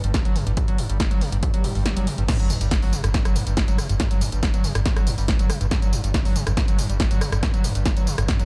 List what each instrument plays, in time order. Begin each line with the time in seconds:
Already playing: synth drone G2
0.04 sub bass G1, acid bass G2, closed hi-hat
0.14 acid bass G1, kick, snare, closed hi-hat
0.25 sub bass G1, acid bass F#3, closed hi-hat
0.36 acid bass C3, open hi-hat
0.47 sub bass G1, acid bass G2, closed hi-hat
0.57 acid bass G2, kick, closed hi-hat
0.68 sub bass G1, acid bass F#3, closed hi-hat
0.78 acid bass G2, open hi-hat
0.89 sub bass G1, acid bass G2, closed hi-hat
1.00 acid bass G1, kick, snare, closed hi-hat
1.11 sub bass G1, acid bass F#3, closed hi-hat
1.21 acid bass C3, open hi-hat
1.32 sub bass G1, acid bass G2, closed hi-hat
1.43 acid bass G2, kick, closed hi-hat, swell
1.54 sub bass G1, acid bass F#3, closed hi-hat
1.64 acid bass G2, open hi-hat
1.75 sub bass G1, acid bass G2, open hi-hat
1.86 acid bass G1, snare, closed hi-hat
1.97 sub bass G1, acid bass F#3, closed hi-hat
2.07 acid bass C3, open hi-hat
2.18 sub bass G1, acid bass G2, closed hi-hat
2.28 acid bass G2, synth drone G2, kick, snare, closed hi-hat, tambourine, crash, sub drop
2.39 sub bass G1, acid bass F#3, closed hi-hat, tambourine
2.50 acid bass G2, open hi-hat, tambourine
2.61 sub bass G1, acid bass G2, closed hi-hat, tambourine
2.71 acid bass G1, kick, snare, closed hi-hat, tambourine
2.82 sub bass G1, acid bass F#3, open hi-hat, tambourine
2.93 acid bass C3, open hi-hat, tambourine
3.04 sub bass G1, acid bass G2, cross-stick, closed hi-hat, tambourine
3.14 acid bass G2, kick, snare, closed hi-hat, tambourine
3.25 sub bass G1, acid bass F#3, cross-stick, closed hi-hat, tambourine
3.35 acid bass G2, open hi-hat, tambourine
3.47 sub bass G1, acid bass G2, closed hi-hat, tambourine
3.57 acid bass G1, kick, snare, closed hi-hat, tambourine
3.68 sub bass G1, acid bass F#3, closed hi-hat, tambourine
3.78 acid bass C3, cross-stick, open hi-hat, tambourine
3.89 sub bass G1, acid bass G2, closed hi-hat, tambourine
4.00 acid bass G2, kick, snare, closed hi-hat, tambourine
4.11 sub bass G1, acid bass F#3, closed hi-hat, tambourine
4.21 acid bass G2, open hi-hat, tambourine
4.32 sub bass G1, acid bass G2, closed hi-hat, tambourine
4.43 acid bass G1, kick, snare, closed hi-hat, tambourine
4.54 sub bass G1, acid bass F#3, closed hi-hat, tambourine
4.64 acid bass C3, open hi-hat, tambourine
4.75 sub bass G1, acid bass G2, cross-stick, closed hi-hat, tambourine
4.86 acid bass G2, kick, snare, closed hi-hat, tambourine
4.97 sub bass G1, acid bass F#3, cross-stick, closed hi-hat, tambourine
5.07 acid bass G2, open hi-hat, tambourine
5.18 sub bass G1, acid bass G2, open hi-hat, tambourine
5.28 acid bass G1, kick, snare, closed hi-hat, tambourine
5.39 sub bass G1, acid bass F#3, closed hi-hat, tambourine
5.50 acid bass C3, cross-stick, open hi-hat, tambourine
5.61 sub bass G1, acid bass G2, closed hi-hat, tambourine
5.71 acid bass G2, kick, snare, closed hi-hat, tambourine
5.82 sub bass G1, acid bass F#3, closed hi-hat, tambourine
5.93 acid bass G2, open hi-hat, tambourine
6.04 sub bass G1, acid bass G2, closed hi-hat, tambourine
6.14 acid bass G1, kick, snare, closed hi-hat, tambourine
6.25 sub bass G1, acid bass F#3, open hi-hat, tambourine
6.36 acid bass C3, open hi-hat, tambourine
6.47 sub bass G1, acid bass G2, cross-stick, closed hi-hat, tambourine
6.57 acid bass G2, kick, snare, closed hi-hat, tambourine
6.68 sub bass G1, acid bass F#3, closed hi-hat, tambourine
6.78 acid bass G2, open hi-hat, tambourine
6.89 sub bass G1, acid bass G2, closed hi-hat, tambourine
7.00 acid bass G1, kick, snare, closed hi-hat, tambourine
7.11 sub bass G1, acid bass F#3, closed hi-hat, tambourine
7.21 acid bass C3, cross-stick, open hi-hat, tambourine
7.32 sub bass G1, acid bass G2, cross-stick, closed hi-hat, tambourine
7.43 acid bass G2, kick, snare, closed hi-hat, tambourine
7.54 sub bass G1, acid bass F#3, closed hi-hat, tambourine
7.64 acid bass G2, open hi-hat, tambourine
7.75 sub bass G1, acid bass G2, closed hi-hat, tambourine
7.86 acid bass G1, kick, snare, closed hi-hat, tambourine
7.97 sub bass G1, acid bass F#3, closed hi-hat, tambourine
8.07 acid bass C3, open hi-hat, tambourine
8.18 sub bass G1, acid bass G2, cross-stick, closed hi-hat, tambourine
8.28 acid bass G2, kick, snare, closed hi-hat, tambourine
8.39 sub bass G1, acid bass F#3, closed hi-hat, tambourine